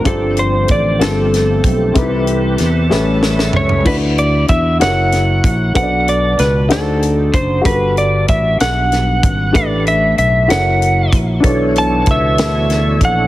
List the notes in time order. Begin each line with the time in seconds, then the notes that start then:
Already playing: D3 C4
0.04 G1 G2 F3 D4 F4 G4 A4 C5, kick, closed hi-hat
0.37 C5, closed hi-hat
0.68 A1 D5, kick, closed hi-hat
0.99 G1 G2 A3 B3 C4 F4 G4 A4, snare, closed hi-hat
1.06 C4
1.34 snare, closed hi-hat
1.64 B1, kick, closed hi-hat
1.94 C2 C3 E3 C4 D#4 G4 B4, kick, closed hi-hat
2.02 E4
2.27 closed hi-hat
2.58 E2, snare, closed hi-hat
2.89 A1 A2 G3 C#4 G4 A4 B4, snare
3.23 snare
3.39 snare
3.53 C#2 C#5, floor tom
3.69 floor tom
3.85 D2 D3 E4 F#4 B4 D5, kick, crash
4.18 D5, closed hi-hat
4.48 E2 E5, kick, closed hi-hat
4.79 F#1 E4 F#4 G4 C#5 F#5, snare, closed hi-hat
4.87 A#4
5.12 snare, closed hi-hat
5.44 A#1, kick, closed hi-hat
5.74 B2 D4 A4 B4 C5 F#5, kick, closed hi-hat
5.83 D5
6.08 D5, closed hi-hat
6.39 C#2 B4, snare, closed hi-hat
6.69 D2 D3 D#4 F#4 A4 C5 D5, snare, closed hi-hat
7.02 closed hi-hat
7.34 F#1 C5, kick, closed hi-hat
7.61 G1 G2 F#4 G4 A4, kick, closed hi-hat
7.66 A#4 B4
7.73 B4
7.97 D5, closed hi-hat
8.28 A1 E5, kick, closed hi-hat
8.60 B1 F#5, snare, closed hi-hat
8.92 snare, closed hi-hat
9.23 G#1, kick, closed hi-hat
9.53 A1 A2 D4 G4 A4 B4 D5, kick, closed hi-hat
9.87 E5, closed hi-hat
10.18 B1 E5, closed hi-hat
10.48 F#1 E4 F#4 A4 C#5 F#5, snare, closed hi-hat
10.56 A#4
10.82 closed hi-hat
11.13 A#1, kick, closed hi-hat
11.40 B1 B2 D4 E4 A4 C#5, kick, closed hi-hat
11.44 E3 D4 C#5
11.76 A5, closed hi-hat
12.06 C#2, kick, closed hi-hat
12.11 E5
12.38 D2, snare, closed hi-hat
12.70 snare, closed hi-hat
13.01 A#1 F#5, kick, closed hi-hat